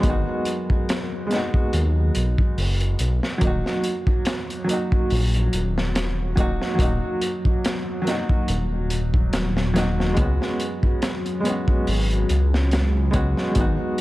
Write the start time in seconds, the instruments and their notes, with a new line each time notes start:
Already playing: ambient pad F#3 A#4
0.01 detuned saw bass G#1, upright piano G#3 B3, kick, closed hi-hat
0.07 upright piano D#4 F#4
0.45 closed hi-hat
0.70 kick
0.89 snare, closed hi-hat
1.27 upright piano G#3 B3
1.31 upright piano D#4, snare, closed hi-hat
1.36 upright piano F#4
1.54 kick
1.73 detuned saw bass D#2, closed hi-hat
2.15 detuned saw bass B1, closed hi-hat
2.38 kick
2.58 detuned saw bass F#1, open hi-hat
2.80 closed hi-hat
2.99 detuned saw bass B1, closed hi-hat
3.23 snare
3.38 detuned saw bass D#1, upright piano F#3 A#3, ambient pad F#3 F#4, kick, closed hi-hat
3.44 upright piano D#4 F#4
3.66 snare
3.84 closed hi-hat
4.07 kick
4.25 snare, closed hi-hat
4.50 closed hi-hat
4.64 upright piano F#3 A#3
4.69 upright piano D#4, closed hi-hat
4.73 upright piano F#4
4.92 kick
5.10 detuned saw bass A#1, open hi-hat
5.34 closed hi-hat
5.53 detuned saw bass D#1, closed hi-hat
5.78 snare
5.95 snare, closed hi-hat
6.36 detuned saw bass D#1, upright piano F#3 A#3 D#4, kick, closed hi-hat
6.40 upright piano F#4
6.62 snare
6.75 upright piano F#3 A#3, kick
6.79 detuned saw bass D#1, upright piano D#4, closed hi-hat
6.84 upright piano F#4
7.21 closed hi-hat
7.45 kick
7.65 snare, closed hi-hat
8.02 upright piano F#3 A#3
8.07 upright piano D#4, snare, closed hi-hat
8.11 upright piano F#4
8.29 kick
8.48 detuned saw bass D#1, closed hi-hat
8.90 closed hi-hat
9.14 kick
9.33 detuned saw bass D#1, snare, closed hi-hat
9.57 snare
9.74 upright piano F#3 A#3 D#4, snare, closed hi-hat
9.78 upright piano F#4
10.00 snare
10.13 upright piano G#3 B3, closed hi-hat
10.17 detuned saw bass C#2, upright piano C#4, kick
10.22 upright piano F#4
10.42 snare
10.60 closed hi-hat
10.83 kick
11.02 snare, closed hi-hat
11.26 closed hi-hat
11.40 upright piano G#3 B3
11.45 upright piano C#4, closed hi-hat
11.50 upright piano F#4
11.68 kick
11.87 detuned saw bass G#1, open hi-hat
12.11 closed hi-hat
12.29 detuned saw bass C#2, closed hi-hat
12.54 snare
12.71 snare, closed hi-hat
13.11 detuned saw bass C#2, upright piano G#3 B3 C#4, kick, closed hi-hat
13.16 upright piano F#4
13.37 snare
13.51 upright piano G#3 B3, closed hi-hat
13.56 detuned saw bass G#1, upright piano D#4, kick
13.61 upright piano F#4